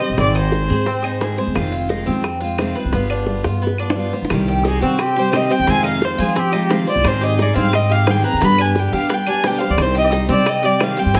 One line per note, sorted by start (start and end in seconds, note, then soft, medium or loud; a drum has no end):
0.00 0.18 G3 soft
0.00 0.18 C4 soft
0.00 0.17 G4 soft
0.00 0.17 C5 medium
0.00 0.17 D#5 medium
0.10 0.17 A#1 medium
0.18 0.67 G#1 medium
0.18 0.51 D#3 medium
0.18 0.52 G#3 medium
0.18 0.35 C4 medium
0.18 0.52 C4 medium
0.18 0.53 G#4 medium
0.18 0.35 D5 medium
0.18 high bongo medium
0.35 0.68 D#4 medium
0.35 1.36 C5 medium
0.35 high bongo soft
0.35 claves medium
0.52 0.69 D#3 soft
0.52 0.69 G#3 soft
0.52 0.69 C4 medium
0.52 0.67 G#4 medium
0.52 high bongo medium
0.68 1.35 G#2 medium
0.68 0.85 G#3 medium
0.68 0.85 C4 medium
0.68 0.85 G#4 medium
0.68 0.86 G#4 medium
0.68 high bongo soft
0.85 1.03 C4 medium
0.85 muted steel-string acoustic guitar stroke soft
0.85 high bongo medium
1.03 1.20 G#3 soft
1.03 1.20 C4 soft
1.03 1.37 D#4 medium
1.03 1.20 G#4 soft
1.03 claves medium
1.20 1.37 D#3 medium
1.20 1.38 G#3 medium
1.20 1.38 C4 medium
1.20 1.36 G#4 medium
1.20 high bongo medium
1.20 low bongo medium
1.38 1.54 G#3 soft
1.38 1.55 C4 soft
1.38 1.55 G#4 soft
1.38 1.72 C5 medium
1.38 high bongo soft
1.47 1.55 D#2 medium
1.54 2.05 F1 medium
1.54 1.89 C3 medium
1.54 1.88 D#3 medium
1.54 1.89 G#3 medium
1.54 1.89 C4 medium
1.54 1.90 F4 medium
1.54 high bongo medium
1.54 claves medium
1.72 1.89 F4 medium
1.89 2.06 D#3 medium
1.89 2.07 G#3 soft
1.89 2.06 C4 medium
1.89 2.06 D#4 medium
1.89 2.05 F4 medium
1.89 high bongo medium
2.06 2.73 F2 medium
2.06 2.23 D#3 soft
2.06 2.23 G#3 medium
2.06 2.40 C4 medium
2.06 2.24 C4 medium
2.06 2.23 F4 medium
2.24 muted steel-string acoustic guitar stroke medium
2.24 high bongo medium
2.24 claves medium
2.40 2.59 G#3 soft
2.40 2.59 C4 soft
2.40 2.74 F4 medium
2.40 2.58 F4 soft
2.58 2.75 C3 medium
2.58 2.76 D#3 medium
2.58 2.76 G#3 medium
2.58 2.76 C4 medium
2.58 2.75 F4 medium
2.58 high bongo medium
2.58 low bongo medium
2.58 claves medium
2.75 2.92 G#3 soft
2.75 2.93 C4 soft
2.75 2.93 F4 soft
2.75 2.92 B4 medium
2.85 2.92 C2 medium
2.93 3.42 G1 medium
2.93 3.26 G3 medium
2.93 3.10 B3 medium
2.93 3.27 B3 medium
2.93 3.28 F4 medium
2.93 high bongo medium
3.10 3.43 D4 medium
3.10 high bongo soft
3.10 claves medium
3.27 3.44 G3 soft
3.27 3.45 B3 medium
3.27 3.43 F4 soft
3.27 high bongo medium
3.44 4.10 G2 medium
3.44 3.62 B3 soft
3.44 3.61 F4 medium
3.44 high bongo loud
3.62 3.78 B3 medium
3.62 muted steel-string acoustic guitar stroke medium
3.67 high bongo medium
3.78 3.96 B3 soft
3.78 4.12 D4 medium
3.78 3.95 F4 soft
3.78 claves medium
3.90 low bongo loud
3.96 4.12 G3 medium
3.96 4.13 B3 medium
3.96 4.13 F4 medium
4.13 4.31 B3 soft
4.13 4.30 F4 soft
4.13 4.30 C5 medium
4.13 low bongo medium
4.22 4.30 D2 medium
4.22 low bongo medium
4.30 4.79 C2 loud
4.30 4.64 C3 medium
4.30 4.63 D#3 medium
4.30 4.64 G3 medium
4.30 4.65 C4 medium
4.30 4.65 G4 medium
4.30 high bongo medium
4.30 claves medium
4.30 maracas medium
4.47 4.65 G4 medium
4.47 maracas soft
4.64 4.81 D#3 soft
4.64 4.82 G3 medium
4.64 4.81 C4 medium
4.64 4.82 D#4 medium
4.64 4.80 G4 medium
4.64 4.82 G#4 medium
4.64 high bongo medium
4.64 maracas medium
4.81 5.47 C3 medium
4.81 4.98 D#3 soft
4.81 4.98 G3 medium
4.81 4.98 C4 medium
4.81 5.15 C4 medium
4.81 5.03 F#4 medium
4.81 4.98 G4 medium
4.81 maracas soft
4.98 5.20 G4 medium
4.98 muted steel-string acoustic guitar stroke medium
4.98 high bongo medium
4.98 claves medium
4.98 maracas medium
5.16 5.32 G3 soft
5.16 5.32 C4 soft
5.16 5.32 G4 soft
5.16 5.49 G4 medium
5.16 5.38 C5 medium
5.16 maracas soft
5.32 5.49 C3 medium
5.32 5.49 D#3 medium
5.32 5.50 G3 medium
5.32 5.49 C4 medium
5.32 5.48 G4 medium
5.32 high bongo medium
5.32 low bongo medium
5.32 claves medium
5.32 maracas medium
5.36 5.53 D#5 medium
5.49 5.67 G3 soft
5.49 5.67 C4 soft
5.49 5.66 G4 soft
5.49 5.67 C5 medium
5.49 5.71 G5 loud
5.49 maracas soft
5.59 5.67 D#2 medium
5.66 6.16 F2 loud
5.66 6.01 C3 medium
5.66 5.99 D#3 medium
5.66 6.01 G#3 medium
5.66 5.84 C4 medium
5.66 6.01 C4 medium
5.66 6.02 F4 medium
5.66 5.85 G#5 loud
5.66 high bongo medium
5.66 maracas medium
5.84 6.18 D#4 medium
5.84 6.06 F5 medium
5.84 high bongo soft
5.84 claves medium
5.84 maracas soft
6.01 6.18 D#3 medium
6.01 6.18 G#3 medium
6.01 6.17 C4 medium
6.01 6.17 F4 medium
6.01 high bongo medium
6.01 maracas medium
6.05 6.21 C5 medium
6.18 6.35 D#3 soft
6.18 6.84 F3 medium
6.18 6.35 G#3 medium
6.18 6.35 C4 medium
6.18 6.35 F4 medium
6.18 6.41 G#4 medium
6.18 high bongo soft
6.18 maracas soft
6.36 6.52 C4 medium
6.36 6.72 G4 medium
6.36 muted steel-string acoustic guitar stroke medium
6.36 high bongo medium
6.36 maracas medium
6.52 6.69 G#3 soft
6.52 6.70 C4 soft
6.52 6.86 D#4 medium
6.52 6.69 F4 medium
6.52 claves medium
6.52 maracas soft
6.69 6.86 C3 medium
6.69 6.86 D#3 medium
6.69 6.87 G#3 medium
6.69 6.87 C4 medium
6.69 6.86 F4 medium
6.69 high bongo medium
6.69 low bongo medium
6.69 maracas medium
6.87 7.05 G#3 soft
6.87 7.04 C4 soft
6.87 7.04 F4 soft
6.87 7.21 C5 medium
6.87 7.09 D5 medium
6.87 high bongo soft
6.87 maracas soft
6.96 7.04 C2 medium
7.04 7.53 G#2 loud
7.04 7.38 D#3 medium
7.04 7.38 C4 medium
7.04 7.39 D#4 medium
7.04 7.39 G#4 medium
7.04 7.25 C5 medium
7.04 high bongo medium
7.04 claves medium
7.04 maracas medium
7.21 7.38 G4 medium
7.21 7.43 D#5 medium
7.21 maracas soft
7.38 7.55 G3 medium
7.38 7.56 C4 medium
7.38 7.55 D#4 medium
7.38 7.56 D#4 medium
7.38 7.55 G#4 medium
7.38 7.56 D5 medium
7.38 high bongo medium
7.38 maracas medium
7.55 8.21 G#2 medium
7.55 7.72 G3 medium
7.55 7.89 C4 medium
7.55 7.72 C4 medium
7.55 7.73 D#4 medium
7.55 7.73 G#4 medium
7.55 7.76 F5 loud
7.55 maracas soft
7.72 7.93 D#5 medium
7.72 muted steel-string acoustic guitar stroke medium
7.72 high bongo medium
7.72 claves medium
7.72 maracas medium
7.90 8.06 C4 soft
7.90 8.07 D#4 soft
7.90 8.23 G4 medium
7.90 8.07 G#4 medium
7.90 8.12 F5 medium
7.90 maracas soft
8.06 8.23 D#3 medium
8.06 8.23 G3 medium
8.06 8.24 C4 medium
8.06 8.24 D#4 medium
8.06 8.22 G#4 medium
8.06 high bongo medium
8.06 low bongo medium
8.06 claves medium
8.06 maracas medium
8.10 8.25 G5 medium
8.24 8.42 C4 soft
8.24 8.41 D#4 soft
8.24 8.40 G#4 soft
8.24 8.41 B4 medium
8.24 8.46 A#5 loud
8.24 maracas soft
8.33 8.41 D#2 medium
8.41 8.90 G2 loud
8.41 8.75 B2 medium
8.41 8.75 D3 medium
8.41 8.75 G3 medium
8.41 8.58 B3 medium
8.41 8.76 B3 medium
8.41 8.76 G4 medium
8.41 8.62 B5 loud
8.41 high bongo medium
8.41 maracas medium
8.58 8.92 D4 medium
8.58 8.80 G#5 medium
8.58 high bongo soft
8.58 claves medium
8.58 maracas soft
8.75 8.92 D3 medium
8.75 8.93 G3 medium
8.75 8.93 B3 medium
8.75 8.92 G4 medium
8.75 8.94 G5 medium
8.75 high bongo medium
8.75 maracas medium
8.92 9.09 D3 medium
8.92 9.58 G3 medium
8.92 9.10 G3 medium
8.92 9.10 B3 medium
8.92 9.09 G4 medium
8.92 9.15 F5 medium
8.92 high bongo soft
8.92 maracas soft
9.09 9.26 B3 medium
9.09 muted steel-string acoustic guitar stroke medium
9.09 high bongo medium
9.09 maracas medium
9.13 9.31 G5 medium
9.26 9.44 G3 soft
9.26 9.44 B3 soft
9.26 9.60 D4 medium
9.26 9.44 G4 soft
9.26 9.48 G#5 medium
9.26 claves medium
9.26 maracas soft
9.43 9.60 B2 medium
9.43 9.61 D3 medium
9.43 9.61 G3 medium
9.43 9.61 B3 medium
9.43 9.60 G4 medium
9.43 9.60 G5 medium
9.43 high bongo medium
9.43 low bongo medium
9.43 maracas medium
9.58 9.78 B3 soft
9.58 9.77 G4 soft
9.58 9.94 C5 medium
9.58 9.72 F5 medium
9.58 high bongo soft
9.58 maracas soft
9.63 9.78 G3 soft
9.70 9.77 D2 medium
9.70 9.83 D5 medium
9.78 10.27 C2 loud
9.78 10.11 C3 medium
9.78 10.11 D#3 medium
9.78 10.12 G3 medium
9.78 10.12 C4 medium
9.78 10.12 G4 medium
9.78 high bongo medium
9.78 claves medium
9.78 maracas medium
9.82 9.97 C5 medium
9.95 10.12 G4 medium
9.95 10.07 D#5 medium
9.95 maracas soft
10.12 10.29 D#3 medium
10.12 10.29 G3 medium
10.12 10.28 C4 medium
10.12 10.29 D#4 medium
10.12 10.28 G4 medium
10.12 high bongo medium
10.12 maracas medium
10.28 10.94 C3 medium
10.28 10.45 D#3 soft
10.28 10.45 G3 medium
10.28 10.62 C4 medium
10.28 10.46 C4 medium
10.28 10.46 G4 medium
10.28 10.51 D5 medium
10.28 maracas soft
10.46 10.67 D#5 loud
10.46 muted steel-string acoustic guitar stroke medium
10.46 high bongo medium
10.46 claves medium
10.46 maracas medium
10.63 10.80 G3 soft
10.63 10.80 C4 soft
10.63 10.96 G4 medium
10.63 10.80 G4 soft
10.63 10.85 D5 medium
10.63 maracas soft
10.80 10.97 C3 medium
10.80 10.97 D#3 medium
10.80 10.97 G3 medium
10.80 10.97 C4 medium
10.80 10.95 G4 medium
10.80 11.01 F5 medium
10.80 high bongo medium
10.80 low bongo medium
10.80 claves medium
10.80 maracas medium
10.96 11.15 G3 soft
10.96 11.14 C4 soft
10.96 11.14 G4 medium
10.96 11.14 C5 medium
10.96 11.18 G5 loud
10.96 maracas soft
11.06 11.13 G2 medium
11.14 11.20 G#1 loud
11.14 11.20 D#3 medium
11.14 11.20 G#3 medium
11.14 11.20 C4 medium
11.14 11.20 G#4 medium
11.14 11.20 G#5 loud
11.14 high bongo medium
11.14 maracas medium